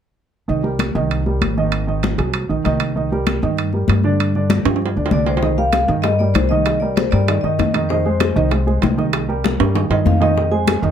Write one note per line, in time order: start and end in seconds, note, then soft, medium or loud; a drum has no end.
0.48 0.92 C2 medium
0.48 0.61 D#3 medium
0.48 0.61 D#4 medium
0.48 0.61 D#5 medium
0.48 high conga soft
0.63 0.89 G3 medium
0.63 0.89 G4 medium
0.63 0.89 A#4 medium
0.63 high conga soft
0.79 high conga medium
0.79 high timbale medium
0.95 1.38 C2 medium
0.95 1.20 D#3 medium
0.95 1.20 D#4 medium
0.95 1.21 D#5 medium
0.95 high conga soft
1.11 high conga soft
1.11 high timbale medium
1.26 1.51 G3 medium
1.26 1.51 G4 medium
1.26 1.52 A#4 medium
1.26 high conga soft
1.42 2.13 G#1 medium
1.42 high conga medium
1.42 high timbale medium
1.58 1.83 D#3 medium
1.58 1.83 D#4 medium
1.58 1.83 D#5 medium
1.58 high conga soft
1.72 high conga soft
1.72 high timbale medium
1.87 2.13 D#3 medium
1.87 2.13 D#4 medium
1.87 2.13 D#5 medium
1.87 high conga soft
2.03 high conga medium
2.03 high timbale medium
2.18 2.47 C2 medium
2.18 2.44 F#3 medium
2.18 2.44 F#4 medium
2.18 2.44 G#4 medium
2.18 high conga soft
2.18 high timbale medium
2.34 high conga soft
2.34 high timbale medium
2.49 2.64 A#1 medium
2.49 2.62 D#3 medium
2.49 2.62 D#4 medium
2.49 2.62 D#5 medium
2.49 high conga soft
2.64 3.37 C2 medium
2.64 2.90 D#3 medium
2.64 2.90 D#4 medium
2.64 2.91 D#5 medium
2.64 high conga medium
2.64 high timbale medium
2.80 high conga soft
2.80 high timbale medium
2.96 3.08 D#3 medium
2.96 3.09 D#4 medium
2.96 3.09 D#5 medium
2.96 high conga soft
3.12 3.37 G3 medium
3.12 3.37 G4 medium
3.12 3.37 A#4 medium
3.12 high conga soft
3.27 high conga medium
3.27 high timbale medium
3.42 3.86 G2 medium
3.42 3.68 D#3 medium
3.42 3.68 D#4 medium
3.42 3.68 D#5 medium
3.42 high conga soft
3.57 high conga soft
3.57 high timbale medium
3.73 3.99 G3 medium
3.73 3.99 G4 medium
3.73 3.99 A#4 medium
3.73 high conga soft
3.88 4.60 G2 medium
3.88 high conga medium
3.88 high timbale medium
3.88 low timbale medium
4.04 4.29 D3 medium
4.04 4.29 D4 medium
4.04 4.30 D5 medium
4.04 high conga soft
4.20 high conga soft
4.20 high timbale medium
4.35 4.60 D3 medium
4.35 4.61 D4 medium
4.35 4.61 D5 medium
4.35 high conga soft
4.50 high conga medium
4.50 high timbale medium
4.65 4.94 G2 medium
4.65 4.91 F3 medium
4.65 4.92 F4 medium
4.65 4.92 G4 medium
4.65 high conga soft
4.65 high timbale medium
4.76 high timbale medium
4.82 high conga soft
4.82 low timbale medium
4.96 5.11 D2 medium
4.96 5.09 D3 medium
4.96 5.09 D4 medium
4.96 5.09 D5 medium
4.96 high conga soft
5.06 low timbale medium
5.11 5.83 C2 medium
5.11 5.37 D3 medium
5.11 5.38 D4 medium
5.11 5.28 D5 medium
5.11 5.38 D5 medium
5.11 high conga medium
5.26 5.56 C5 medium
5.26 high conga soft
5.26 low timbale medium
5.37 low timbale medium
5.42 5.55 D#3 medium
5.42 5.55 D#4 medium
5.42 5.56 D#5 medium
5.42 high bongo medium
5.42 high conga soft
5.58 5.83 G3 medium
5.58 5.83 G4 medium
5.58 5.84 A#4 medium
5.58 5.87 F5 medium
5.58 high conga soft
5.73 high bongo medium
5.73 high conga medium
5.73 high timbale medium
5.88 6.32 G2 medium
5.88 6.01 D#3 medium
5.88 6.02 D#4 medium
5.88 6.02 D#5 medium
5.88 high bongo soft
5.88 high conga soft
6.02 6.17 G3 medium
6.02 6.17 G4 medium
6.02 6.17 A#4 medium
6.02 6.19 D#5 loud
6.02 high bongo medium
6.02 high conga soft
6.02 high timbale medium
6.19 6.45 G3 medium
6.19 6.46 G4 medium
6.19 6.46 A#4 medium
6.19 6.35 D5 medium
6.19 high bongo soft
6.19 high conga soft
6.34 7.06 C2 medium
6.34 6.49 C5 medium
6.34 high bongo soft
6.34 low bongo medium
6.34 high conga medium
6.34 high timbale medium
6.49 6.76 D#3 medium
6.49 6.76 D#4 medium
6.49 6.82 D#5 medium
6.49 6.77 D#5 medium
6.49 high bongo soft
6.49 high conga soft
6.66 high bongo medium
6.66 high conga soft
6.66 high timbale medium
6.80 7.07 G3 medium
6.80 7.07 G4 medium
6.80 7.07 A#4 medium
6.80 6.97 D5 medium
6.80 high conga soft
6.96 7.12 C5 medium
6.96 high bongo soft
6.96 high conga medium
6.96 high timbale medium
7.11 7.41 G2 loud
7.11 7.26 G3 medium
7.11 7.26 G4 medium
7.11 7.26 A#4 medium
7.11 7.44 D5 medium
7.11 high bongo soft
7.11 high conga soft
7.11 high timbale medium
7.28 7.41 D#3 medium
7.28 7.41 D#4 medium
7.28 7.41 D#5 medium
7.28 high bongo medium
7.28 high conga soft
7.28 high timbale medium
7.41 7.58 G2 medium
7.41 7.69 D#3 medium
7.41 7.69 D#4 medium
7.41 7.71 D#5 medium
7.41 7.69 D#5 medium
7.41 high bongo soft
7.41 high conga soft
7.59 8.31 F2 medium
7.59 high bongo soft
7.59 low bongo medium
7.59 high conga medium
7.59 high timbale medium
7.74 7.87 D#3 medium
7.74 7.87 D#4 medium
7.74 7.87 D#5 medium
7.74 high bongo soft
7.74 high conga soft
7.74 high timbale medium
7.89 8.03 D#3 medium
7.89 8.03 D#4 medium
7.89 8.47 C5 medium
7.89 8.03 D#5 medium
7.89 high bongo medium
7.89 high conga soft
8.06 8.31 G#3 medium
8.06 8.31 G#4 medium
8.06 8.31 C5 medium
8.06 high conga soft
8.20 high bongo medium
8.20 high conga medium
8.20 high timbale medium
8.36 8.79 C2 loud
8.36 8.49 D#3 medium
8.36 8.49 D#4 medium
8.36 8.49 D#5 medium
8.36 high bongo soft
8.36 high conga soft
8.51 8.64 G#3 medium
8.51 8.64 G#4 medium
8.51 8.65 C5 medium
8.51 high bongo medium
8.51 high conga soft
8.51 high timbale medium
8.67 8.92 G#3 medium
8.67 8.92 G#4 medium
8.67 8.92 C5 medium
8.67 high bongo soft
8.67 high conga soft
8.82 9.55 C2 medium
8.82 high bongo soft
8.82 low bongo medium
8.82 high conga medium
8.82 high timbale medium
8.82 low timbale medium
8.98 9.23 D#3 medium
8.98 9.23 D#4 medium
8.98 9.24 D#5 medium
8.98 high bongo soft
8.98 high conga soft
9.13 high bongo medium
9.13 high conga soft
9.13 high timbale medium
9.28 9.54 G3 medium
9.28 9.54 G4 medium
9.28 9.54 A#4 medium
9.28 high conga soft
9.44 high bongo medium
9.44 high conga medium
9.44 high timbale medium
9.60 9.89 G2 medium
9.60 9.73 G3 medium
9.60 9.73 G4 medium
9.60 9.73 A#4 medium
9.60 high bongo soft
9.60 high conga soft
9.60 high timbale medium
9.74 9.87 D#3 medium
9.74 9.88 D#4 medium
9.74 9.88 D#5 medium
9.74 high bongo medium
9.74 high conga soft
9.74 high timbale medium
9.90 10.05 G2 medium
9.90 10.16 D#3 medium
9.90 10.16 D#4 medium
9.90 10.16 D#5 medium
9.90 high bongo soft
9.90 high conga soft
9.90 low timbale medium
10.06 10.78 F2 medium
10.06 10.13 F5 medium
10.06 high bongo soft
10.06 low bongo medium
10.06 high conga medium
10.21 10.34 D#3 medium
10.21 10.34 D#4 medium
10.21 10.34 D#5 medium
10.21 10.53 D#5 medium
10.21 high bongo soft
10.21 high conga soft
10.21 low timbale medium
10.36 10.49 D#3 medium
10.36 10.49 D#4 medium
10.36 10.50 D#5 medium
10.36 high bongo medium
10.36 high conga soft
10.51 10.77 G#3 medium
10.51 10.77 G#4 medium
10.51 10.77 C5 medium
10.51 10.81 G#5 medium
10.51 high conga soft
10.68 high bongo medium
10.68 high conga medium
10.68 high timbale medium
10.82 10.91 F2 medium
10.82 10.91 D#3 medium
10.82 10.91 D#4 medium
10.82 10.91 D#5 medium
10.82 high bongo soft
10.82 high conga soft